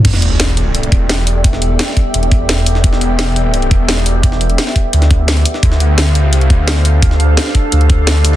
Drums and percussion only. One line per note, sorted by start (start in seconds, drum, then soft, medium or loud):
0.05 kick loud
0.05 closed hi-hat medium
0.05 closed hi-hat loud
0.05 crash loud
0.14 snare medium
0.22 closed hi-hat medium
0.40 snare loud
0.40 closed hi-hat medium
0.40 closed hi-hat loud
0.48 closed hi-hat soft
0.57 closed hi-hat medium
0.75 closed hi-hat medium
0.83 closed hi-hat soft
0.92 kick loud
0.92 closed hi-hat medium
1.09 snare loud
1.09 closed hi-hat medium
1.09 closed hi-hat loud
1.18 snare soft
1.27 closed hi-hat medium
1.27 open hi-hat medium
1.44 kick loud
1.44 closed hi-hat medium
1.44 closed hi-hat loud
1.53 snare soft
1.62 closed hi-hat medium
1.79 snare loud
1.79 closed hi-hat medium
1.88 snare soft
1.97 kick medium
1.97 closed hi-hat medium
2.14 closed hi-hat medium
2.14 closed hi-hat loud
2.23 closed hi-hat soft
2.32 kick loud
2.32 closed hi-hat medium
2.49 snare loud
2.49 closed hi-hat medium
2.49 closed hi-hat loud
2.58 closed hi-hat soft
2.66 closed hi-hat medium
2.66 open hi-hat medium
2.75 snare soft
2.84 kick loud
2.84 closed hi-hat medium
2.84 closed hi-hat loud
2.93 snare medium
3.01 closed hi-hat medium
3.19 snare loud
3.19 closed hi-hat medium
3.19 closed hi-hat loud
3.27 closed hi-hat soft
3.36 closed hi-hat medium
3.54 closed hi-hat medium
3.62 closed hi-hat soft
3.71 kick loud
3.71 closed hi-hat medium
3.89 snare loud
3.89 closed hi-hat medium
3.97 snare soft
4.06 closed hi-hat medium
4.06 open hi-hat medium
4.23 kick loud
4.23 closed hi-hat medium
4.32 snare soft
4.41 closed hi-hat medium
4.50 closed hi-hat soft
4.58 snare loud
4.58 closed hi-hat medium
4.67 snare soft
4.76 kick medium
4.76 closed hi-hat medium
4.93 closed hi-hat medium
5.02 snare medium
5.02 closed hi-hat soft
5.11 kick loud
5.11 closed hi-hat medium
5.28 snare loud
5.28 closed hi-hat medium
5.37 closed hi-hat soft
5.45 closed hi-hat medium
5.45 open hi-hat medium
5.54 snare soft
5.63 kick loud
5.63 closed hi-hat medium
5.72 snare medium
5.80 closed hi-hat medium
5.98 snare loud
5.98 closed hi-hat medium
6.07 closed hi-hat soft
6.15 closed hi-hat medium
6.33 closed hi-hat medium
6.41 closed hi-hat soft
6.50 kick loud
6.50 closed hi-hat medium
6.68 snare loud
6.68 closed hi-hat medium
6.76 snare soft
6.85 closed hi-hat medium
6.85 open hi-hat medium
7.02 kick loud
7.02 closed hi-hat medium
7.11 snare soft
7.20 closed hi-hat medium
7.37 snare loud
7.37 closed hi-hat medium
7.46 snare soft
7.55 kick medium
7.55 closed hi-hat medium
7.72 closed hi-hat medium
7.81 closed hi-hat soft
7.90 kick loud
7.90 closed hi-hat medium
8.07 snare loud
8.07 closed hi-hat medium
8.16 closed hi-hat soft
8.25 closed hi-hat medium
8.25 open hi-hat medium